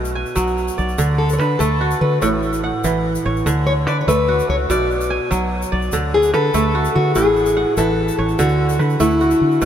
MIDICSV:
0, 0, Header, 1, 5, 480
1, 0, Start_track
1, 0, Tempo, 411241
1, 1147, Time_signature, 12, 3, 24, 8
1, 11265, End_track
2, 0, Start_track
2, 0, Title_t, "Steel-string acoustic guitar"
2, 0, Program_c, 0, 25
2, 1382, Note_on_c, 0, 69, 71
2, 1551, Note_off_c, 0, 69, 0
2, 1556, Note_on_c, 0, 73, 53
2, 1610, Note_off_c, 0, 73, 0
2, 1614, Note_on_c, 0, 71, 76
2, 1856, Note_on_c, 0, 69, 77
2, 1871, Note_off_c, 0, 71, 0
2, 2312, Note_off_c, 0, 69, 0
2, 2348, Note_on_c, 0, 71, 81
2, 2585, Note_off_c, 0, 71, 0
2, 2590, Note_on_c, 0, 73, 83
2, 2655, Note_off_c, 0, 73, 0
2, 4279, Note_on_c, 0, 73, 89
2, 4344, Note_off_c, 0, 73, 0
2, 4521, Note_on_c, 0, 74, 89
2, 4676, Note_off_c, 0, 74, 0
2, 4681, Note_on_c, 0, 73, 64
2, 4761, Note_off_c, 0, 73, 0
2, 4766, Note_on_c, 0, 71, 87
2, 5209, Note_off_c, 0, 71, 0
2, 5250, Note_on_c, 0, 73, 87
2, 5314, Note_off_c, 0, 73, 0
2, 5497, Note_on_c, 0, 74, 75
2, 5712, Note_off_c, 0, 74, 0
2, 7171, Note_on_c, 0, 68, 93
2, 7397, Note_off_c, 0, 68, 0
2, 7402, Note_on_c, 0, 69, 94
2, 8113, Note_off_c, 0, 69, 0
2, 8118, Note_on_c, 0, 66, 86
2, 8345, Note_off_c, 0, 66, 0
2, 8350, Note_on_c, 0, 68, 90
2, 9071, Note_off_c, 0, 68, 0
2, 9076, Note_on_c, 0, 69, 86
2, 9519, Note_off_c, 0, 69, 0
2, 9791, Note_on_c, 0, 66, 92
2, 10235, Note_off_c, 0, 66, 0
2, 10507, Note_on_c, 0, 64, 78
2, 11223, Note_off_c, 0, 64, 0
2, 11228, Note_on_c, 0, 62, 67
2, 11265, Note_off_c, 0, 62, 0
2, 11265, End_track
3, 0, Start_track
3, 0, Title_t, "Kora"
3, 0, Program_c, 1, 46
3, 0, Note_on_c, 1, 47, 77
3, 0, Note_on_c, 1, 57, 76
3, 0, Note_on_c, 1, 66, 65
3, 0, Note_on_c, 1, 71, 59
3, 168, Note_off_c, 1, 71, 0
3, 179, Note_on_c, 1, 80, 62
3, 249, Note_off_c, 1, 57, 0
3, 415, Note_on_c, 1, 54, 74
3, 907, Note_on_c, 1, 74, 59
3, 922, Note_off_c, 1, 66, 0
3, 1147, Note_on_c, 1, 50, 79
3, 1206, Note_off_c, 1, 47, 0
3, 1206, Note_off_c, 1, 54, 0
3, 1230, Note_off_c, 1, 80, 0
3, 1629, Note_on_c, 1, 71, 60
3, 1866, Note_on_c, 1, 57, 77
3, 2110, Note_on_c, 1, 66, 68
3, 2201, Note_off_c, 1, 74, 0
3, 2592, Note_on_c, 1, 45, 76
3, 2653, Note_off_c, 1, 50, 0
3, 3064, Note_off_c, 1, 71, 0
3, 3077, Note_on_c, 1, 78, 66
3, 3318, Note_on_c, 1, 52, 72
3, 3800, Note_on_c, 1, 73, 67
3, 3816, Note_off_c, 1, 66, 0
3, 4038, Note_on_c, 1, 50, 79
3, 4097, Note_off_c, 1, 45, 0
3, 4097, Note_off_c, 1, 52, 0
3, 4197, Note_off_c, 1, 57, 0
3, 4202, Note_off_c, 1, 78, 0
3, 4518, Note_on_c, 1, 71, 61
3, 4760, Note_on_c, 1, 57, 81
3, 5001, Note_on_c, 1, 66, 67
3, 5139, Note_off_c, 1, 73, 0
3, 5483, Note_on_c, 1, 47, 80
3, 5537, Note_off_c, 1, 50, 0
3, 5953, Note_off_c, 1, 71, 0
3, 5956, Note_on_c, 1, 80, 69
3, 6026, Note_off_c, 1, 57, 0
3, 6194, Note_on_c, 1, 54, 74
3, 6675, Note_on_c, 1, 74, 66
3, 6707, Note_off_c, 1, 66, 0
3, 6922, Note_on_c, 1, 50, 79
3, 6975, Note_off_c, 1, 54, 0
3, 6976, Note_off_c, 1, 47, 0
3, 7006, Note_off_c, 1, 80, 0
3, 7398, Note_on_c, 1, 71, 64
3, 7636, Note_on_c, 1, 57, 81
3, 7875, Note_on_c, 1, 66, 63
3, 7969, Note_off_c, 1, 74, 0
3, 8354, Note_on_c, 1, 45, 77
3, 8412, Note_off_c, 1, 50, 0
3, 8832, Note_on_c, 1, 78, 64
3, 8833, Note_off_c, 1, 71, 0
3, 9079, Note_on_c, 1, 52, 78
3, 9554, Note_on_c, 1, 73, 65
3, 9581, Note_off_c, 1, 66, 0
3, 9791, Note_on_c, 1, 50, 84
3, 9847, Note_off_c, 1, 45, 0
3, 9847, Note_off_c, 1, 52, 0
3, 9958, Note_off_c, 1, 78, 0
3, 9968, Note_off_c, 1, 57, 0
3, 10260, Note_on_c, 1, 71, 57
3, 10504, Note_on_c, 1, 57, 79
3, 10749, Note_on_c, 1, 66, 66
3, 10893, Note_off_c, 1, 73, 0
3, 11222, Note_on_c, 1, 47, 79
3, 11265, Note_off_c, 1, 47, 0
3, 11265, Note_off_c, 1, 50, 0
3, 11265, Note_off_c, 1, 57, 0
3, 11265, Note_off_c, 1, 66, 0
3, 11265, Note_off_c, 1, 71, 0
3, 11265, End_track
4, 0, Start_track
4, 0, Title_t, "Fingered electric bass"
4, 0, Program_c, 2, 33
4, 0, Note_on_c, 2, 35, 88
4, 274, Note_off_c, 2, 35, 0
4, 423, Note_on_c, 2, 35, 81
4, 806, Note_off_c, 2, 35, 0
4, 918, Note_on_c, 2, 35, 84
4, 1105, Note_off_c, 2, 35, 0
4, 1144, Note_on_c, 2, 38, 88
4, 1628, Note_off_c, 2, 38, 0
4, 1628, Note_on_c, 2, 50, 86
4, 1820, Note_off_c, 2, 50, 0
4, 1869, Note_on_c, 2, 38, 78
4, 2252, Note_off_c, 2, 38, 0
4, 2347, Note_on_c, 2, 50, 79
4, 2541, Note_off_c, 2, 50, 0
4, 2591, Note_on_c, 2, 33, 85
4, 3165, Note_off_c, 2, 33, 0
4, 3315, Note_on_c, 2, 33, 79
4, 3697, Note_off_c, 2, 33, 0
4, 3801, Note_on_c, 2, 33, 82
4, 3990, Note_off_c, 2, 33, 0
4, 4035, Note_on_c, 2, 38, 90
4, 4515, Note_off_c, 2, 38, 0
4, 4515, Note_on_c, 2, 50, 81
4, 4707, Note_off_c, 2, 50, 0
4, 4754, Note_on_c, 2, 38, 85
4, 5136, Note_off_c, 2, 38, 0
4, 5243, Note_on_c, 2, 37, 79
4, 5432, Note_off_c, 2, 37, 0
4, 5479, Note_on_c, 2, 35, 89
4, 6049, Note_off_c, 2, 35, 0
4, 6202, Note_on_c, 2, 35, 90
4, 6580, Note_off_c, 2, 35, 0
4, 6682, Note_on_c, 2, 35, 90
4, 6870, Note_off_c, 2, 35, 0
4, 6914, Note_on_c, 2, 38, 84
4, 7395, Note_off_c, 2, 38, 0
4, 7395, Note_on_c, 2, 50, 89
4, 7585, Note_off_c, 2, 50, 0
4, 7635, Note_on_c, 2, 38, 88
4, 8015, Note_off_c, 2, 38, 0
4, 8122, Note_on_c, 2, 50, 75
4, 8308, Note_off_c, 2, 50, 0
4, 8351, Note_on_c, 2, 33, 87
4, 8921, Note_off_c, 2, 33, 0
4, 9069, Note_on_c, 2, 33, 84
4, 9449, Note_off_c, 2, 33, 0
4, 9552, Note_on_c, 2, 33, 84
4, 9741, Note_off_c, 2, 33, 0
4, 9789, Note_on_c, 2, 38, 80
4, 10264, Note_off_c, 2, 38, 0
4, 10264, Note_on_c, 2, 50, 84
4, 10455, Note_off_c, 2, 50, 0
4, 10508, Note_on_c, 2, 38, 81
4, 10886, Note_off_c, 2, 38, 0
4, 10987, Note_on_c, 2, 50, 76
4, 11175, Note_off_c, 2, 50, 0
4, 11226, Note_on_c, 2, 35, 84
4, 11265, Note_off_c, 2, 35, 0
4, 11265, End_track
5, 0, Start_track
5, 0, Title_t, "Drums"
5, 57, Note_on_c, 9, 82, 50
5, 174, Note_off_c, 9, 82, 0
5, 303, Note_on_c, 9, 82, 21
5, 419, Note_off_c, 9, 82, 0
5, 420, Note_on_c, 9, 82, 66
5, 537, Note_off_c, 9, 82, 0
5, 552, Note_on_c, 9, 82, 21
5, 668, Note_off_c, 9, 82, 0
5, 671, Note_on_c, 9, 82, 19
5, 787, Note_off_c, 9, 82, 0
5, 793, Note_on_c, 9, 82, 52
5, 909, Note_off_c, 9, 82, 0
5, 911, Note_on_c, 9, 82, 20
5, 1027, Note_off_c, 9, 82, 0
5, 1033, Note_on_c, 9, 82, 21
5, 1147, Note_off_c, 9, 82, 0
5, 1147, Note_on_c, 9, 82, 65
5, 1264, Note_off_c, 9, 82, 0
5, 1509, Note_on_c, 9, 82, 52
5, 1626, Note_off_c, 9, 82, 0
5, 1635, Note_on_c, 9, 82, 21
5, 1752, Note_off_c, 9, 82, 0
5, 1872, Note_on_c, 9, 82, 67
5, 1989, Note_off_c, 9, 82, 0
5, 2229, Note_on_c, 9, 82, 47
5, 2346, Note_off_c, 9, 82, 0
5, 2590, Note_on_c, 9, 82, 60
5, 2707, Note_off_c, 9, 82, 0
5, 2831, Note_on_c, 9, 82, 19
5, 2948, Note_off_c, 9, 82, 0
5, 2951, Note_on_c, 9, 82, 49
5, 3068, Note_off_c, 9, 82, 0
5, 3315, Note_on_c, 9, 82, 64
5, 3432, Note_off_c, 9, 82, 0
5, 3679, Note_on_c, 9, 82, 49
5, 3796, Note_off_c, 9, 82, 0
5, 3928, Note_on_c, 9, 82, 20
5, 4045, Note_off_c, 9, 82, 0
5, 4047, Note_on_c, 9, 82, 67
5, 4164, Note_off_c, 9, 82, 0
5, 4527, Note_on_c, 9, 82, 22
5, 4643, Note_off_c, 9, 82, 0
5, 4772, Note_on_c, 9, 82, 64
5, 4889, Note_off_c, 9, 82, 0
5, 5129, Note_on_c, 9, 82, 47
5, 5245, Note_off_c, 9, 82, 0
5, 5489, Note_on_c, 9, 82, 65
5, 5606, Note_off_c, 9, 82, 0
5, 5728, Note_on_c, 9, 82, 20
5, 5845, Note_off_c, 9, 82, 0
5, 5846, Note_on_c, 9, 82, 51
5, 5962, Note_off_c, 9, 82, 0
5, 6205, Note_on_c, 9, 82, 62
5, 6322, Note_off_c, 9, 82, 0
5, 6560, Note_on_c, 9, 82, 52
5, 6677, Note_off_c, 9, 82, 0
5, 6792, Note_on_c, 9, 82, 21
5, 6908, Note_off_c, 9, 82, 0
5, 6908, Note_on_c, 9, 82, 64
5, 7025, Note_off_c, 9, 82, 0
5, 7268, Note_on_c, 9, 82, 53
5, 7385, Note_off_c, 9, 82, 0
5, 7392, Note_on_c, 9, 82, 21
5, 7508, Note_off_c, 9, 82, 0
5, 7634, Note_on_c, 9, 82, 64
5, 7750, Note_off_c, 9, 82, 0
5, 7991, Note_on_c, 9, 82, 48
5, 8108, Note_off_c, 9, 82, 0
5, 8347, Note_on_c, 9, 82, 64
5, 8464, Note_off_c, 9, 82, 0
5, 8593, Note_on_c, 9, 82, 21
5, 8705, Note_off_c, 9, 82, 0
5, 8705, Note_on_c, 9, 82, 52
5, 8822, Note_off_c, 9, 82, 0
5, 9069, Note_on_c, 9, 82, 66
5, 9186, Note_off_c, 9, 82, 0
5, 9434, Note_on_c, 9, 82, 53
5, 9550, Note_off_c, 9, 82, 0
5, 9672, Note_on_c, 9, 82, 21
5, 9789, Note_off_c, 9, 82, 0
5, 9792, Note_on_c, 9, 82, 65
5, 9908, Note_off_c, 9, 82, 0
5, 10144, Note_on_c, 9, 82, 53
5, 10261, Note_off_c, 9, 82, 0
5, 10266, Note_on_c, 9, 82, 20
5, 10383, Note_off_c, 9, 82, 0
5, 10387, Note_on_c, 9, 82, 20
5, 10503, Note_off_c, 9, 82, 0
5, 10505, Note_on_c, 9, 82, 64
5, 10622, Note_off_c, 9, 82, 0
5, 10742, Note_on_c, 9, 82, 20
5, 10859, Note_off_c, 9, 82, 0
5, 10862, Note_on_c, 9, 82, 49
5, 10979, Note_off_c, 9, 82, 0
5, 11104, Note_on_c, 9, 82, 20
5, 11221, Note_off_c, 9, 82, 0
5, 11224, Note_on_c, 9, 82, 64
5, 11265, Note_off_c, 9, 82, 0
5, 11265, End_track
0, 0, End_of_file